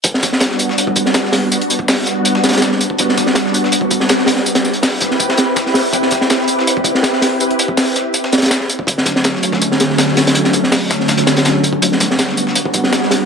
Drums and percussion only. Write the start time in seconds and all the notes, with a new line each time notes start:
0.04 kick, closed hi-hat, tambourine
0.14 snare
0.23 kick, snare, closed hi-hat, tambourine
0.32 snare
0.40 snare, closed hi-hat, tambourine
0.51 snare
0.59 closed hi-hat, tambourine
0.69 snare
0.78 closed hi-hat, tambourine
0.87 kick
0.96 kick, closed hi-hat, tambourine
1.06 snare
1.14 snare, closed hi-hat, tambourine
1.25 snare
1.32 snare, closed hi-hat, open hi-hat
1.52 closed hi-hat, tambourine
1.62 closed hi-hat
1.70 closed hi-hat, tambourine
1.79 kick
1.88 snare, open hi-hat, tambourine
2.06 snare, closed hi-hat, tambourine
2.25 closed hi-hat, tambourine
2.35 snare
2.44 snare, closed hi-hat, tambourine
2.49 snare, closed hi-hat
2.53 snare, closed hi-hat
2.57 snare, closed hi-hat
2.62 snare, closed hi-hat, tambourine
2.72 snare
2.81 closed hi-hat, tambourine
2.90 kick
2.98 kick, closed hi-hat, tambourine
3.09 snare
3.17 kick, snare, closed hi-hat, tambourine
3.26 snare
3.35 snare, closed hi-hat, tambourine
3.46 snare
3.54 closed hi-hat, tambourine
3.64 snare
3.72 closed hi-hat, tambourine
3.81 kick
3.91 kick, closed hi-hat, tambourine
4.00 snare
4.09 snare, closed hi-hat, tambourine
4.19 snare
4.26 snare, closed hi-hat, open hi-hat
4.36 snare
4.46 closed hi-hat, tambourine
4.55 snare, closed hi-hat
4.64 snare, tambourine
4.73 closed hi-hat
4.83 snare, open hi-hat, tambourine
5.01 kick, snare, closed hi-hat, tambourine
5.11 snare
5.20 kick, closed hi-hat, tambourine
5.29 snare
5.38 snare, closed hi-hat, tambourine
5.56 kick, snare, closed hi-hat, tambourine
5.66 snare
5.74 snare, open hi-hat, tambourine
5.93 kick, closed hi-hat, tambourine
6.02 snare
6.11 kick, snare, closed hi-hat, tambourine
6.21 snare
6.30 snare, closed hi-hat, tambourine
6.40 snare
6.48 closed hi-hat, tambourine
6.59 snare
6.67 closed hi-hat, tambourine
6.77 kick
6.84 kick, closed hi-hat, tambourine
6.95 snare
7.03 snare, closed hi-hat, tambourine
7.13 snare
7.22 snare, closed hi-hat, open hi-hat
7.40 closed hi-hat, tambourine
7.51 closed hi-hat
7.59 closed hi-hat, tambourine
7.68 kick
7.77 snare, open hi-hat, tambourine
7.96 snare, closed hi-hat, tambourine
8.14 closed hi-hat, tambourine
8.24 snare
8.32 snare, closed hi-hat, tambourine
8.38 snare, closed hi-hat
8.42 snare, closed hi-hat
8.46 snare, closed hi-hat
8.51 snare, closed hi-hat, tambourine
8.60 snare
8.69 closed hi-hat, tambourine
8.79 kick
8.87 kick, closed hi-hat, tambourine
8.98 snare
9.06 kick, snare, closed hi-hat, tambourine
9.16 snare
9.24 snare, closed hi-hat, tambourine
9.35 snare
9.43 closed hi-hat, tambourine
9.52 kick, snare
9.62 kick, closed hi-hat, tambourine
9.72 snare
9.80 snare, closed hi-hat, tambourine
9.90 snare
9.98 snare, closed hi-hat, tambourine
10.08 snare
10.17 snare, closed hi-hat, open hi-hat
10.27 snare, closed hi-hat
10.35 kick, closed hi-hat, tambourine
10.44 snare, closed hi-hat
10.53 kick, closed hi-hat, tambourine
10.64 snare
10.72 snare, open hi-hat, tambourine
10.90 kick, snare, closed hi-hat, tambourine
11.00 snare
11.08 kick, snare, closed hi-hat, tambourine
11.17 kick, snare, closed hi-hat
11.27 snare, closed hi-hat, tambourine
11.37 snare, closed hi-hat
11.45 snare, closed hi-hat, tambourine
11.64 kick, closed hi-hat, tambourine
11.73 kick
11.82 kick, closed hi-hat, tambourine
11.92 snare
12.00 kick, snare, closed hi-hat, tambourine
12.11 snare
12.19 snare, closed hi-hat, tambourine
12.29 snare
12.37 closed hi-hat, tambourine
12.47 snare
12.55 closed hi-hat, tambourine
12.65 kick
12.74 kick, closed hi-hat, tambourine
12.84 snare
12.93 snare, closed hi-hat, tambourine
13.02 snare
13.11 snare, closed hi-hat, open hi-hat